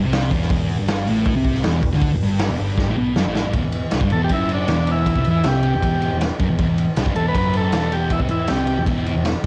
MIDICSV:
0, 0, Header, 1, 5, 480
1, 0, Start_track
1, 0, Key_signature, 1, "minor"
1, 0, Tempo, 380469
1, 647, Time_signature, 4, 2, 24, 8
1, 11940, End_track
2, 0, Start_track
2, 0, Title_t, "Transistor combo organ"
2, 0, Program_c, 0, 18
2, 5200, Note_on_c, 0, 69, 100
2, 5321, Note_off_c, 0, 69, 0
2, 5351, Note_on_c, 0, 67, 89
2, 5446, Note_off_c, 0, 67, 0
2, 5469, Note_on_c, 0, 64, 103
2, 5699, Note_off_c, 0, 64, 0
2, 5721, Note_on_c, 0, 62, 88
2, 6192, Note_off_c, 0, 62, 0
2, 6200, Note_on_c, 0, 64, 89
2, 6672, Note_off_c, 0, 64, 0
2, 6692, Note_on_c, 0, 64, 94
2, 6909, Note_on_c, 0, 67, 82
2, 6910, Note_off_c, 0, 64, 0
2, 7803, Note_off_c, 0, 67, 0
2, 9033, Note_on_c, 0, 69, 98
2, 9160, Note_off_c, 0, 69, 0
2, 9190, Note_on_c, 0, 71, 101
2, 9293, Note_off_c, 0, 71, 0
2, 9308, Note_on_c, 0, 71, 106
2, 9541, Note_off_c, 0, 71, 0
2, 9553, Note_on_c, 0, 69, 94
2, 10003, Note_on_c, 0, 67, 82
2, 10031, Note_off_c, 0, 69, 0
2, 10248, Note_on_c, 0, 64, 81
2, 10250, Note_off_c, 0, 67, 0
2, 10355, Note_off_c, 0, 64, 0
2, 10483, Note_on_c, 0, 64, 82
2, 10703, Note_on_c, 0, 67, 75
2, 10731, Note_off_c, 0, 64, 0
2, 11160, Note_off_c, 0, 67, 0
2, 11940, End_track
3, 0, Start_track
3, 0, Title_t, "Distorted electric guitar"
3, 0, Program_c, 1, 30
3, 42, Note_on_c, 1, 48, 94
3, 397, Note_on_c, 1, 40, 102
3, 398, Note_off_c, 1, 48, 0
3, 630, Note_off_c, 1, 40, 0
3, 645, Note_on_c, 1, 40, 119
3, 990, Note_off_c, 1, 40, 0
3, 995, Note_on_c, 1, 43, 102
3, 1353, Note_off_c, 1, 43, 0
3, 1357, Note_on_c, 1, 45, 106
3, 1710, Note_off_c, 1, 45, 0
3, 1716, Note_on_c, 1, 48, 102
3, 2064, Note_on_c, 1, 40, 106
3, 2072, Note_off_c, 1, 48, 0
3, 2293, Note_off_c, 1, 40, 0
3, 2308, Note_on_c, 1, 40, 71
3, 2428, Note_on_c, 1, 50, 96
3, 2435, Note_off_c, 1, 40, 0
3, 2667, Note_off_c, 1, 50, 0
3, 2687, Note_on_c, 1, 40, 69
3, 2804, Note_off_c, 1, 40, 0
3, 2810, Note_on_c, 1, 43, 106
3, 3151, Note_off_c, 1, 43, 0
3, 3156, Note_on_c, 1, 40, 104
3, 3265, Note_off_c, 1, 40, 0
3, 3270, Note_on_c, 1, 43, 116
3, 3627, Note_off_c, 1, 43, 0
3, 3633, Note_on_c, 1, 45, 91
3, 3748, Note_off_c, 1, 45, 0
3, 3753, Note_on_c, 1, 47, 93
3, 3988, Note_off_c, 1, 47, 0
3, 3992, Note_on_c, 1, 42, 99
3, 4107, Note_off_c, 1, 42, 0
3, 4126, Note_on_c, 1, 45, 97
3, 4354, Note_off_c, 1, 45, 0
3, 4368, Note_on_c, 1, 43, 95
3, 4470, Note_off_c, 1, 43, 0
3, 4476, Note_on_c, 1, 40, 108
3, 4581, Note_off_c, 1, 40, 0
3, 4596, Note_on_c, 1, 40, 69
3, 4788, Note_off_c, 1, 40, 0
3, 4956, Note_on_c, 1, 48, 94
3, 5069, Note_off_c, 1, 48, 0
3, 5079, Note_on_c, 1, 43, 97
3, 5190, Note_off_c, 1, 43, 0
3, 5212, Note_on_c, 1, 40, 106
3, 5444, Note_off_c, 1, 40, 0
3, 5444, Note_on_c, 1, 42, 96
3, 5912, Note_off_c, 1, 42, 0
3, 5917, Note_on_c, 1, 40, 97
3, 6509, Note_off_c, 1, 40, 0
3, 6523, Note_on_c, 1, 48, 93
3, 6632, Note_off_c, 1, 48, 0
3, 6639, Note_on_c, 1, 52, 102
3, 6870, Note_off_c, 1, 52, 0
3, 6875, Note_on_c, 1, 48, 96
3, 7229, Note_off_c, 1, 48, 0
3, 7241, Note_on_c, 1, 40, 70
3, 7347, Note_off_c, 1, 40, 0
3, 7362, Note_on_c, 1, 40, 97
3, 7706, Note_off_c, 1, 40, 0
3, 7722, Note_on_c, 1, 40, 78
3, 7911, Note_off_c, 1, 40, 0
3, 8071, Note_on_c, 1, 42, 98
3, 8187, Note_off_c, 1, 42, 0
3, 8204, Note_on_c, 1, 40, 70
3, 8305, Note_off_c, 1, 40, 0
3, 8320, Note_on_c, 1, 40, 108
3, 8420, Note_off_c, 1, 40, 0
3, 8435, Note_on_c, 1, 40, 64
3, 8629, Note_off_c, 1, 40, 0
3, 8803, Note_on_c, 1, 48, 96
3, 8914, Note_off_c, 1, 48, 0
3, 8922, Note_on_c, 1, 43, 100
3, 9025, Note_off_c, 1, 43, 0
3, 9030, Note_on_c, 1, 40, 104
3, 9281, Note_off_c, 1, 40, 0
3, 9281, Note_on_c, 1, 42, 99
3, 9751, Note_off_c, 1, 42, 0
3, 9756, Note_on_c, 1, 40, 100
3, 10351, Note_on_c, 1, 48, 90
3, 10353, Note_off_c, 1, 40, 0
3, 10464, Note_off_c, 1, 48, 0
3, 10469, Note_on_c, 1, 52, 102
3, 10709, Note_off_c, 1, 52, 0
3, 10721, Note_on_c, 1, 48, 102
3, 11076, Note_off_c, 1, 48, 0
3, 11080, Note_on_c, 1, 40, 74
3, 11186, Note_off_c, 1, 40, 0
3, 11201, Note_on_c, 1, 40, 108
3, 11548, Note_off_c, 1, 40, 0
3, 11563, Note_on_c, 1, 40, 70
3, 11757, Note_off_c, 1, 40, 0
3, 11940, End_track
4, 0, Start_track
4, 0, Title_t, "Picked electric bass"
4, 0, Program_c, 2, 34
4, 55, Note_on_c, 2, 36, 92
4, 382, Note_off_c, 2, 36, 0
4, 390, Note_on_c, 2, 28, 88
4, 621, Note_off_c, 2, 28, 0
4, 627, Note_on_c, 2, 28, 95
4, 970, Note_off_c, 2, 28, 0
4, 1006, Note_on_c, 2, 31, 100
4, 1340, Note_off_c, 2, 31, 0
4, 1352, Note_on_c, 2, 33, 98
4, 1692, Note_off_c, 2, 33, 0
4, 1711, Note_on_c, 2, 36, 96
4, 2051, Note_off_c, 2, 36, 0
4, 2073, Note_on_c, 2, 28, 94
4, 2300, Note_off_c, 2, 28, 0
4, 2310, Note_on_c, 2, 28, 79
4, 2427, Note_off_c, 2, 28, 0
4, 2441, Note_on_c, 2, 38, 89
4, 2664, Note_off_c, 2, 38, 0
4, 2678, Note_on_c, 2, 28, 74
4, 2791, Note_off_c, 2, 28, 0
4, 2804, Note_on_c, 2, 31, 96
4, 3136, Note_off_c, 2, 31, 0
4, 3156, Note_on_c, 2, 28, 92
4, 3266, Note_off_c, 2, 28, 0
4, 3274, Note_on_c, 2, 31, 103
4, 3610, Note_off_c, 2, 31, 0
4, 3632, Note_on_c, 2, 33, 91
4, 3742, Note_off_c, 2, 33, 0
4, 3750, Note_on_c, 2, 35, 98
4, 3976, Note_off_c, 2, 35, 0
4, 3994, Note_on_c, 2, 30, 80
4, 4103, Note_off_c, 2, 30, 0
4, 4111, Note_on_c, 2, 33, 84
4, 4337, Note_off_c, 2, 33, 0
4, 4351, Note_on_c, 2, 31, 97
4, 4457, Note_off_c, 2, 31, 0
4, 4465, Note_on_c, 2, 28, 98
4, 4582, Note_off_c, 2, 28, 0
4, 4591, Note_on_c, 2, 28, 73
4, 4816, Note_off_c, 2, 28, 0
4, 4946, Note_on_c, 2, 36, 99
4, 5052, Note_off_c, 2, 36, 0
4, 5059, Note_on_c, 2, 31, 96
4, 5173, Note_off_c, 2, 31, 0
4, 5181, Note_on_c, 2, 28, 99
4, 5411, Note_off_c, 2, 28, 0
4, 5425, Note_on_c, 2, 30, 90
4, 5876, Note_off_c, 2, 30, 0
4, 5906, Note_on_c, 2, 28, 92
4, 6468, Note_off_c, 2, 28, 0
4, 6506, Note_on_c, 2, 36, 91
4, 6622, Note_off_c, 2, 36, 0
4, 6644, Note_on_c, 2, 40, 91
4, 6863, Note_off_c, 2, 40, 0
4, 6873, Note_on_c, 2, 36, 96
4, 7209, Note_off_c, 2, 36, 0
4, 7246, Note_on_c, 2, 28, 81
4, 7339, Note_off_c, 2, 28, 0
4, 7346, Note_on_c, 2, 28, 89
4, 7686, Note_off_c, 2, 28, 0
4, 7712, Note_on_c, 2, 28, 80
4, 7938, Note_off_c, 2, 28, 0
4, 8064, Note_on_c, 2, 30, 90
4, 8182, Note_off_c, 2, 30, 0
4, 8188, Note_on_c, 2, 28, 79
4, 8304, Note_off_c, 2, 28, 0
4, 8311, Note_on_c, 2, 28, 92
4, 8422, Note_off_c, 2, 28, 0
4, 8429, Note_on_c, 2, 28, 83
4, 8657, Note_off_c, 2, 28, 0
4, 8793, Note_on_c, 2, 36, 97
4, 8900, Note_off_c, 2, 36, 0
4, 8907, Note_on_c, 2, 31, 93
4, 9011, Note_off_c, 2, 31, 0
4, 9018, Note_on_c, 2, 28, 97
4, 9251, Note_off_c, 2, 28, 0
4, 9267, Note_on_c, 2, 30, 91
4, 9720, Note_off_c, 2, 30, 0
4, 9746, Note_on_c, 2, 28, 86
4, 10312, Note_off_c, 2, 28, 0
4, 10344, Note_on_c, 2, 36, 97
4, 10464, Note_off_c, 2, 36, 0
4, 10475, Note_on_c, 2, 40, 94
4, 10702, Note_off_c, 2, 40, 0
4, 10715, Note_on_c, 2, 36, 102
4, 11054, Note_off_c, 2, 36, 0
4, 11079, Note_on_c, 2, 28, 81
4, 11175, Note_off_c, 2, 28, 0
4, 11183, Note_on_c, 2, 28, 92
4, 11529, Note_off_c, 2, 28, 0
4, 11556, Note_on_c, 2, 28, 78
4, 11784, Note_off_c, 2, 28, 0
4, 11940, End_track
5, 0, Start_track
5, 0, Title_t, "Drums"
5, 156, Note_on_c, 9, 46, 73
5, 166, Note_on_c, 9, 38, 105
5, 282, Note_off_c, 9, 46, 0
5, 293, Note_off_c, 9, 38, 0
5, 393, Note_on_c, 9, 36, 85
5, 393, Note_on_c, 9, 46, 60
5, 519, Note_off_c, 9, 36, 0
5, 520, Note_off_c, 9, 46, 0
5, 526, Note_on_c, 9, 38, 30
5, 628, Note_on_c, 9, 46, 77
5, 631, Note_on_c, 9, 36, 118
5, 652, Note_off_c, 9, 38, 0
5, 754, Note_off_c, 9, 46, 0
5, 757, Note_off_c, 9, 36, 0
5, 869, Note_on_c, 9, 46, 59
5, 995, Note_off_c, 9, 46, 0
5, 1106, Note_on_c, 9, 46, 79
5, 1116, Note_on_c, 9, 38, 114
5, 1232, Note_off_c, 9, 46, 0
5, 1242, Note_off_c, 9, 38, 0
5, 1348, Note_on_c, 9, 46, 60
5, 1474, Note_off_c, 9, 46, 0
5, 1574, Note_on_c, 9, 46, 72
5, 1586, Note_on_c, 9, 36, 116
5, 1700, Note_off_c, 9, 46, 0
5, 1712, Note_off_c, 9, 36, 0
5, 1819, Note_on_c, 9, 46, 57
5, 1824, Note_on_c, 9, 36, 81
5, 1945, Note_off_c, 9, 46, 0
5, 1949, Note_on_c, 9, 38, 32
5, 1950, Note_off_c, 9, 36, 0
5, 2059, Note_on_c, 9, 46, 76
5, 2069, Note_off_c, 9, 38, 0
5, 2069, Note_on_c, 9, 38, 116
5, 2185, Note_off_c, 9, 46, 0
5, 2196, Note_off_c, 9, 38, 0
5, 2306, Note_on_c, 9, 36, 92
5, 2306, Note_on_c, 9, 46, 66
5, 2432, Note_off_c, 9, 36, 0
5, 2432, Note_off_c, 9, 46, 0
5, 2438, Note_on_c, 9, 38, 31
5, 2543, Note_on_c, 9, 46, 89
5, 2544, Note_on_c, 9, 36, 107
5, 2564, Note_off_c, 9, 38, 0
5, 2669, Note_off_c, 9, 46, 0
5, 2670, Note_off_c, 9, 36, 0
5, 2785, Note_on_c, 9, 46, 59
5, 2912, Note_off_c, 9, 46, 0
5, 3013, Note_on_c, 9, 46, 80
5, 3023, Note_on_c, 9, 38, 110
5, 3139, Note_off_c, 9, 46, 0
5, 3149, Note_off_c, 9, 38, 0
5, 3254, Note_on_c, 9, 46, 56
5, 3380, Note_off_c, 9, 46, 0
5, 3502, Note_on_c, 9, 36, 107
5, 3514, Note_on_c, 9, 38, 62
5, 3628, Note_off_c, 9, 36, 0
5, 3640, Note_off_c, 9, 38, 0
5, 3987, Note_on_c, 9, 38, 85
5, 4114, Note_off_c, 9, 38, 0
5, 4230, Note_on_c, 9, 38, 92
5, 4356, Note_off_c, 9, 38, 0
5, 4457, Note_on_c, 9, 51, 92
5, 4461, Note_on_c, 9, 36, 107
5, 4583, Note_off_c, 9, 51, 0
5, 4587, Note_off_c, 9, 36, 0
5, 4696, Note_on_c, 9, 51, 73
5, 4822, Note_off_c, 9, 51, 0
5, 4934, Note_on_c, 9, 51, 92
5, 4944, Note_on_c, 9, 38, 102
5, 5058, Note_on_c, 9, 36, 106
5, 5060, Note_off_c, 9, 51, 0
5, 5070, Note_off_c, 9, 38, 0
5, 5172, Note_on_c, 9, 51, 66
5, 5184, Note_off_c, 9, 36, 0
5, 5299, Note_off_c, 9, 51, 0
5, 5416, Note_on_c, 9, 51, 100
5, 5422, Note_on_c, 9, 36, 94
5, 5542, Note_off_c, 9, 51, 0
5, 5548, Note_off_c, 9, 36, 0
5, 5662, Note_on_c, 9, 51, 68
5, 5788, Note_off_c, 9, 51, 0
5, 5901, Note_on_c, 9, 51, 94
5, 5911, Note_on_c, 9, 38, 104
5, 6027, Note_off_c, 9, 51, 0
5, 6037, Note_off_c, 9, 38, 0
5, 6143, Note_on_c, 9, 51, 73
5, 6269, Note_off_c, 9, 51, 0
5, 6386, Note_on_c, 9, 36, 111
5, 6388, Note_on_c, 9, 51, 93
5, 6504, Note_off_c, 9, 36, 0
5, 6504, Note_on_c, 9, 36, 88
5, 6514, Note_off_c, 9, 51, 0
5, 6617, Note_on_c, 9, 51, 72
5, 6630, Note_off_c, 9, 36, 0
5, 6743, Note_off_c, 9, 51, 0
5, 6858, Note_on_c, 9, 51, 91
5, 6868, Note_on_c, 9, 38, 104
5, 6984, Note_off_c, 9, 51, 0
5, 6994, Note_off_c, 9, 38, 0
5, 7100, Note_on_c, 9, 51, 68
5, 7226, Note_off_c, 9, 51, 0
5, 7349, Note_on_c, 9, 36, 97
5, 7352, Note_on_c, 9, 51, 88
5, 7475, Note_off_c, 9, 36, 0
5, 7479, Note_off_c, 9, 51, 0
5, 7592, Note_on_c, 9, 51, 62
5, 7718, Note_off_c, 9, 51, 0
5, 7832, Note_on_c, 9, 51, 89
5, 7842, Note_on_c, 9, 38, 102
5, 7958, Note_off_c, 9, 51, 0
5, 7968, Note_off_c, 9, 38, 0
5, 8070, Note_on_c, 9, 51, 72
5, 8071, Note_on_c, 9, 36, 110
5, 8196, Note_off_c, 9, 51, 0
5, 8197, Note_off_c, 9, 36, 0
5, 8309, Note_on_c, 9, 51, 81
5, 8311, Note_on_c, 9, 36, 112
5, 8435, Note_off_c, 9, 51, 0
5, 8437, Note_off_c, 9, 36, 0
5, 8553, Note_on_c, 9, 51, 72
5, 8680, Note_off_c, 9, 51, 0
5, 8786, Note_on_c, 9, 51, 89
5, 8796, Note_on_c, 9, 38, 105
5, 8906, Note_on_c, 9, 36, 100
5, 8912, Note_off_c, 9, 51, 0
5, 8922, Note_off_c, 9, 38, 0
5, 9027, Note_on_c, 9, 51, 72
5, 9032, Note_off_c, 9, 36, 0
5, 9154, Note_off_c, 9, 51, 0
5, 9268, Note_on_c, 9, 36, 96
5, 9270, Note_on_c, 9, 51, 92
5, 9394, Note_off_c, 9, 36, 0
5, 9397, Note_off_c, 9, 51, 0
5, 9505, Note_on_c, 9, 51, 68
5, 9631, Note_off_c, 9, 51, 0
5, 9743, Note_on_c, 9, 51, 97
5, 9753, Note_on_c, 9, 38, 108
5, 9869, Note_off_c, 9, 51, 0
5, 9879, Note_off_c, 9, 38, 0
5, 9991, Note_on_c, 9, 51, 82
5, 10117, Note_off_c, 9, 51, 0
5, 10221, Note_on_c, 9, 51, 98
5, 10223, Note_on_c, 9, 36, 107
5, 10341, Note_off_c, 9, 36, 0
5, 10341, Note_on_c, 9, 36, 83
5, 10347, Note_off_c, 9, 51, 0
5, 10453, Note_on_c, 9, 51, 69
5, 10467, Note_off_c, 9, 36, 0
5, 10579, Note_off_c, 9, 51, 0
5, 10692, Note_on_c, 9, 51, 93
5, 10702, Note_on_c, 9, 38, 109
5, 10818, Note_off_c, 9, 51, 0
5, 10828, Note_off_c, 9, 38, 0
5, 10936, Note_on_c, 9, 51, 63
5, 11062, Note_off_c, 9, 51, 0
5, 11183, Note_on_c, 9, 36, 101
5, 11188, Note_on_c, 9, 51, 88
5, 11309, Note_off_c, 9, 36, 0
5, 11314, Note_off_c, 9, 51, 0
5, 11434, Note_on_c, 9, 51, 63
5, 11561, Note_off_c, 9, 51, 0
5, 11668, Note_on_c, 9, 51, 84
5, 11678, Note_on_c, 9, 38, 103
5, 11794, Note_off_c, 9, 51, 0
5, 11804, Note_off_c, 9, 38, 0
5, 11940, End_track
0, 0, End_of_file